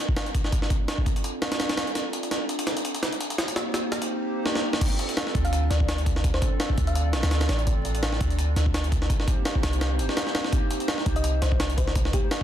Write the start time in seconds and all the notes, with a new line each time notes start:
0.09 kick
0.17 snare, closed hi-hat
0.26 closed hi-hat
0.35 kick, closed hi-hat
0.44 snare
0.52 C4 D4 F4 A4 D5, kick, closed hi-hat
0.62 snare
0.70 kick, closed hi-hat
0.88 snare, closed hi-hat
0.98 kick
1.06 C4 D4 F4 A4 D5, kick, closed hi-hat
1.16 closed hi-hat
1.24 closed hi-hat
1.42 snare, closed hi-hat
1.52 snare, closed hi-hat
1.60 snare, closed hi-hat
1.69 snare, closed hi-hat
1.77 snare, closed hi-hat
1.87 closed hi-hat
1.95 C4 D4 F4 A4 D5, snare, closed hi-hat
2.13 closed hi-hat
2.23 closed hi-hat
2.31 snare, closed hi-hat
2.49 C4 D4 F4 A4 D5, closed hi-hat
2.59 closed hi-hat
2.67 snare, closed hi-hat
2.77 closed hi-hat
2.85 closed hi-hat
2.94 closed hi-hat
3.03 snare, closed hi-hat
3.12 closed hi-hat
3.20 closed hi-hat
3.30 closed hi-hat
3.38 A#3 C4 D#4 G4 C5, snare, closed hi-hat
3.48 closed hi-hat
3.56 snare, closed hi-hat
3.74 snare, closed hi-hat
3.92 A#3 C4 D#4 G4 C5, snare, closed hi-hat
4.02 closed hi-hat
4.46 snare
4.55 snare
4.73 snare
4.81 C4 D4 F4 A4 D5, kick, closed hi-hat, crash
4.99 closed hi-hat
5.09 closed hi-hat
5.17 snare, closed hi-hat
5.27 snare
5.34 D2 C4 D4 F4 A4 D5, kick, closed hi-hat
5.45 F5, closed hi-hat
5.53 closed hi-hat
5.70 D2 D5, snare, closed hi-hat
5.80 kick
5.89 snare, closed hi-hat
5.98 closed hi-hat
6.06 kick, closed hi-hat
6.16 snare
6.24 C4 D4 F4 A4 D5, kick, closed hi-hat
6.34 C5, snare
6.42 kick, closed hi-hat
6.60 snare, closed hi-hat
6.70 kick
6.77 D2 C4 D4 F4 A4 D5, kick, closed hi-hat
6.87 F5, closed hi-hat
6.95 closed hi-hat
7.13 A1, snare, closed hi-hat
7.23 D2, snare, closed hi-hat
7.31 snare, closed hi-hat
7.41 snare, closed hi-hat
7.49 A1 D5, snare, closed hi-hat
7.59 closed hi-hat
7.67 C4 D4 F4 A4 D5, kick, closed hi-hat
7.85 closed hi-hat
7.95 closed hi-hat
8.03 snare, closed hi-hat
8.12 snare
8.20 D2 C4 D4 F4 A4 D5, kick, closed hi-hat
8.30 closed hi-hat
8.39 closed hi-hat
8.56 D2, snare, closed hi-hat
8.66 kick
8.74 snare, closed hi-hat
8.84 closed hi-hat
8.92 kick, closed hi-hat
9.02 snare
9.09 A#3 C4 D#4 G4 C5, kick, closed hi-hat
9.20 snare
9.28 kick, closed hi-hat
9.45 snare, closed hi-hat
9.55 kick
9.63 C2 A#3 C4 D#4 G4 C5, snare, closed hi-hat
9.73 closed hi-hat
9.81 snare, closed hi-hat
9.99 G1, closed hi-hat
10.09 snare
10.17 snare, closed hi-hat
10.27 snare
10.35 snare, closed hi-hat
10.44 snare
10.52 A#3 C4 D#4 G4 C5, kick, closed hi-hat
10.71 closed hi-hat
10.80 closed hi-hat
10.88 snare, closed hi-hat
10.98 snare
11.06 C2 A#3 C4 D#4 G4 C5, kick, closed hi-hat
11.16 D#5, closed hi-hat
11.24 closed hi-hat
11.42 C2 C5, snare, closed hi-hat
11.52 kick
11.60 snare, closed hi-hat
11.70 closed hi-hat
11.78 C5, kick, closed hi-hat
11.87 snare
11.95 A#3 C4 D#4 G4 C5, kick, closed hi-hat
12.05 snare
12.13 G4, kick, closed hi-hat
12.31 snare, closed hi-hat